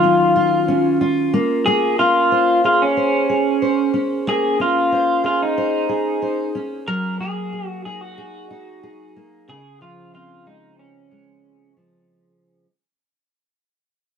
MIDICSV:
0, 0, Header, 1, 3, 480
1, 0, Start_track
1, 0, Key_signature, -5, "major"
1, 0, Tempo, 652174
1, 1220, Time_signature, 4, 2, 24, 8
1, 10436, End_track
2, 0, Start_track
2, 0, Title_t, "Clean electric guitar"
2, 0, Program_c, 0, 27
2, 0, Note_on_c, 0, 65, 86
2, 711, Note_off_c, 0, 65, 0
2, 1219, Note_on_c, 0, 68, 116
2, 1443, Note_off_c, 0, 68, 0
2, 1465, Note_on_c, 0, 65, 108
2, 1913, Note_off_c, 0, 65, 0
2, 1954, Note_on_c, 0, 65, 97
2, 2070, Note_off_c, 0, 65, 0
2, 2076, Note_on_c, 0, 61, 88
2, 2878, Note_off_c, 0, 61, 0
2, 3155, Note_on_c, 0, 68, 114
2, 3393, Note_off_c, 0, 68, 0
2, 3396, Note_on_c, 0, 65, 104
2, 3838, Note_off_c, 0, 65, 0
2, 3871, Note_on_c, 0, 65, 93
2, 3977, Note_off_c, 0, 65, 0
2, 3993, Note_on_c, 0, 63, 83
2, 4796, Note_off_c, 0, 63, 0
2, 5061, Note_on_c, 0, 70, 115
2, 5300, Note_off_c, 0, 70, 0
2, 5303, Note_on_c, 0, 68, 106
2, 5642, Note_off_c, 0, 68, 0
2, 5642, Note_on_c, 0, 66, 106
2, 5751, Note_off_c, 0, 66, 0
2, 5780, Note_on_c, 0, 68, 89
2, 5895, Note_off_c, 0, 68, 0
2, 5895, Note_on_c, 0, 66, 86
2, 6736, Note_off_c, 0, 66, 0
2, 6988, Note_on_c, 0, 68, 110
2, 7206, Note_off_c, 0, 68, 0
2, 7227, Note_on_c, 0, 65, 103
2, 7446, Note_off_c, 0, 65, 0
2, 7468, Note_on_c, 0, 65, 98
2, 7686, Note_off_c, 0, 65, 0
2, 7706, Note_on_c, 0, 63, 90
2, 7925, Note_off_c, 0, 63, 0
2, 7944, Note_on_c, 0, 61, 78
2, 8630, Note_off_c, 0, 61, 0
2, 10436, End_track
3, 0, Start_track
3, 0, Title_t, "Steel-string acoustic guitar"
3, 0, Program_c, 1, 25
3, 0, Note_on_c, 1, 51, 89
3, 0, Note_on_c, 1, 54, 65
3, 0, Note_on_c, 1, 65, 70
3, 24, Note_on_c, 1, 61, 65
3, 259, Note_off_c, 1, 65, 0
3, 262, Note_on_c, 1, 65, 80
3, 498, Note_off_c, 1, 61, 0
3, 501, Note_on_c, 1, 61, 62
3, 739, Note_off_c, 1, 65, 0
3, 742, Note_on_c, 1, 65, 71
3, 980, Note_off_c, 1, 54, 0
3, 983, Note_on_c, 1, 58, 85
3, 1028, Note_off_c, 1, 51, 0
3, 1225, Note_off_c, 1, 58, 0
3, 1228, Note_on_c, 1, 58, 86
3, 1461, Note_off_c, 1, 61, 0
3, 1464, Note_on_c, 1, 61, 57
3, 1705, Note_on_c, 1, 72, 68
3, 1942, Note_off_c, 1, 65, 0
3, 1945, Note_on_c, 1, 68, 64
3, 2176, Note_off_c, 1, 72, 0
3, 2185, Note_on_c, 1, 72, 74
3, 2420, Note_off_c, 1, 68, 0
3, 2423, Note_on_c, 1, 68, 67
3, 2654, Note_off_c, 1, 72, 0
3, 2663, Note_on_c, 1, 72, 68
3, 2894, Note_off_c, 1, 61, 0
3, 2897, Note_on_c, 1, 61, 67
3, 3141, Note_off_c, 1, 58, 0
3, 3144, Note_on_c, 1, 58, 85
3, 3379, Note_off_c, 1, 61, 0
3, 3382, Note_on_c, 1, 61, 61
3, 3613, Note_off_c, 1, 72, 0
3, 3622, Note_on_c, 1, 72, 67
3, 3853, Note_off_c, 1, 68, 0
3, 3856, Note_on_c, 1, 68, 64
3, 4096, Note_off_c, 1, 72, 0
3, 4105, Note_on_c, 1, 72, 76
3, 4333, Note_off_c, 1, 68, 0
3, 4336, Note_on_c, 1, 68, 63
3, 4569, Note_off_c, 1, 72, 0
3, 4578, Note_on_c, 1, 72, 67
3, 4817, Note_off_c, 1, 61, 0
3, 4820, Note_on_c, 1, 61, 66
3, 5057, Note_off_c, 1, 58, 0
3, 5060, Note_on_c, 1, 54, 86
3, 5106, Note_off_c, 1, 72, 0
3, 5294, Note_off_c, 1, 61, 0
3, 5297, Note_on_c, 1, 58, 62
3, 5319, Note_off_c, 1, 68, 0
3, 5540, Note_on_c, 1, 68, 69
3, 5781, Note_on_c, 1, 63, 65
3, 6016, Note_off_c, 1, 68, 0
3, 6019, Note_on_c, 1, 68, 75
3, 6250, Note_off_c, 1, 63, 0
3, 6259, Note_on_c, 1, 63, 65
3, 6497, Note_off_c, 1, 68, 0
3, 6500, Note_on_c, 1, 68, 72
3, 6735, Note_off_c, 1, 58, 0
3, 6744, Note_on_c, 1, 58, 62
3, 6978, Note_off_c, 1, 54, 0
3, 6980, Note_on_c, 1, 49, 89
3, 7026, Note_off_c, 1, 63, 0
3, 7029, Note_off_c, 1, 58, 0
3, 7220, Note_on_c, 1, 53, 65
3, 7462, Note_on_c, 1, 60, 68
3, 7698, Note_on_c, 1, 56, 66
3, 8177, Note_off_c, 1, 56, 0
3, 8180, Note_on_c, 1, 56, 62
3, 8657, Note_off_c, 1, 53, 0
3, 8660, Note_on_c, 1, 53, 63
3, 9076, Note_off_c, 1, 68, 0
3, 9314, Note_off_c, 1, 49, 0
3, 9314, Note_off_c, 1, 53, 0
3, 9314, Note_off_c, 1, 56, 0
3, 9314, Note_off_c, 1, 60, 0
3, 10436, End_track
0, 0, End_of_file